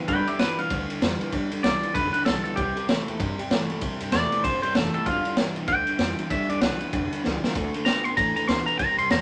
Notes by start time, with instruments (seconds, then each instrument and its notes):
0.08 upright bass G1, clean electric guitar G2 D3 B4 G5, steel-string acoustic guitar G3, kick, ride
0.27 clean electric guitar G2 D3 G4 E5, ride
0.39 upright bass G1, clean electric guitar G2 E3 B4 D5, steel-string acoustic guitar G3 B3 F4, snare, ride
0.58 upright bass B1, clean electric guitar G2 E3 F5, steel-string acoustic guitar B3 F4, ride
0.70 upright bass D2, clean electric guitar G2 D3, steel-string acoustic guitar D3, kick, ride
0.89 clean electric guitar G2 D3, ride
1.01 upright bass F2, clean electric guitar G2 E3, steel-string acoustic guitar G3 B3 F4, snare, ride
1.20 clean electric guitar G2 E3, steel-string acoustic guitar B3 F4, ride
1.32 upright bass D2, clean electric guitar G2 D3, steel-string acoustic guitar G3, kick, ride
1.51 upright bass D2, clean electric guitar G2 D3, ride
1.63 upright bass B1, clean electric guitar G2 E3 D5, steel-string acoustic guitar G3 B3 F4, snare, ride
1.82 clean electric guitar G2 E3, steel-string acoustic guitar B3 F4, muted upright bass stroke, ride
1.94 upright bass F1, clean electric guitar G2 D3 B4, steel-string acoustic guitar D3, kick, ride
2.13 clean electric guitar G2 D3 B4, ride
2.25 upright bass B1, clean electric guitar G2 E3 A4, steel-string acoustic guitar G3 B3 F4, snare, ride
2.44 clean electric guitar G2 E3 A4, ride
2.56 upright bass C2, clean electric guitar C3 G3 G4, steel-string acoustic guitar C3, kick, ride
2.76 clean electric guitar C3 G3, ride
2.88 upright bass C2, clean electric guitar C3 A3, steel-string acoustic guitar E3 A#3 C4 E4, snare, ride
3.07 upright bass E2, clean electric guitar C3 A3, steel-string acoustic guitar C4 E4, ride
3.19 upright bass G2, steel-string acoustic guitar G2, clean electric guitar C3 G3, kick, ride
3.39 clean electric guitar C3 G3, muted upright bass stroke, ride
3.50 upright bass A#2, clean electric guitar C3 A3, steel-string acoustic guitar E3 A#3 C4 E4, snare, ride
3.69 clean electric guitar C3 A3, steel-string acoustic guitar C4 E4, muted upright bass stroke, ride
3.81 upright bass G2, clean electric guitar C3 G3, steel-string acoustic guitar C3, kick, ride
4.00 upright bass G2, clean electric guitar C3 G3, ride
4.12 upright bass E2, clean electric guitar C3 A3 D5, steel-string acoustic guitar E3 A#3 C4 E4, snare, ride
4.32 clean electric guitar C3 A3, muted upright bass stroke, ride
4.44 upright bass A#1, steel-string acoustic guitar G2, clean electric guitar C3 G3 C5, kick, ride
4.62 clean electric guitar C3 G3 C5, muted upright bass stroke, ride
4.75 upright bass F1, clean electric guitar C3 A3 A4, steel-string acoustic guitar E3 A#3 C4 E4, snare, ride
4.93 clean electric guitar C3 A3 A4, steel-string acoustic guitar C4 E4, ride
5.05 upright bass G1, clean electric guitar G2 D3 F4, steel-string acoustic guitar G3, kick, ride
5.24 clean electric guitar G2 D3, muted upright bass stroke, ride
5.36 upright bass G1, clean electric guitar G2 E3, steel-string acoustic guitar G3 B3 F4, snare, ride
5.56 upright bass B1, clean electric guitar G2 E3, steel-string acoustic guitar B3 F4, ride
5.68 upright bass D2, clean electric guitar G2 D3 G5, steel-string acoustic guitar D3, kick, ride
5.87 clean electric guitar G2 D3, muted upright bass stroke, ride
5.99 upright bass F2, clean electric guitar G2 E3, steel-string acoustic guitar G3 B3 F4, snare, ride
6.18 clean electric guitar G2 E3, steel-string acoustic guitar B3 F4, ride
6.30 upright bass D2, clean electric guitar G2 D3 E5, steel-string acoustic guitar G3, kick, ride
6.49 upright bass D2, clean electric guitar G2 D3 D5, ride
6.61 upright bass B1, clean electric guitar G2 E3 B4, steel-string acoustic guitar G3 B3 F4, snare, ride
6.80 clean electric guitar G2 E3, steel-string acoustic guitar B3 F4, muted upright bass stroke, ride
6.93 upright bass F1, clean electric guitar G2 D3, steel-string acoustic guitar D3, kick, ride
7.12 clean electric guitar G2 D3, ride
7.24 upright bass C#2, clean electric guitar G2 E3, steel-string acoustic guitar G3 B3 F4, snare
7.43 clean electric guitar G2 E3, steel-string acoustic guitar B3 F4, muted upright bass stroke, snare
7.55 upright bass D2, clean electric guitar D3 A3, steel-string acoustic guitar D3, kick, ride
7.74 clean electric guitar D3 A3, muted upright bass stroke, ride
7.85 upright bass D2, steel-string acoustic guitar D3 A3 C4 F#4, clean electric guitar D3 B3 A#5, snare, ride
8.04 upright bass F#2, clean electric guitar D3 B3 C6, steel-string acoustic guitar C4 F#4, ride
8.16 upright bass A2, clean electric guitar D3 A3 A#5, steel-string acoustic guitar E3, kick, ride
8.36 clean electric guitar D3 A3 A#5, muted upright bass stroke, ride
8.48 upright bass D2, steel-string acoustic guitar B2, clean electric guitar D3 B3 C6, snare, ride
8.66 clean electric guitar D3 B3 A#5, muted upright bass stroke, ride
8.79 upright bass C2, clean electric guitar C3 G3 A#5, steel-string acoustic guitar C3, kick, ride
8.98 upright bass G2, clean electric guitar C3 G3 C6, ride
9.10 upright bass E2, clean electric guitar C3 A3 A#5, steel-string acoustic guitar E3 A#3 C4 E4, snare, ride